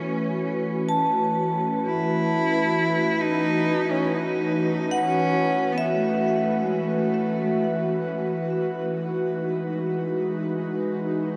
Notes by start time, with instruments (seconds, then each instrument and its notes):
Already playing: analog synth pad E3 A3 C#4 F#4 B4, cello C#4
0.89 vibraphone A5
1.86 cello E4
3.21 cello D#4
3.91 cello C#4
4.14 cello D#4
4.91 vibraphone F#5
5.04 cello C#4
5.72 cello B3
5.78 vibraphone E5
5.95 cello A3
6.62 cello G#3
6.86 cello A3
8.84 analog synth pad D#4
9.32 analog synth pad G#3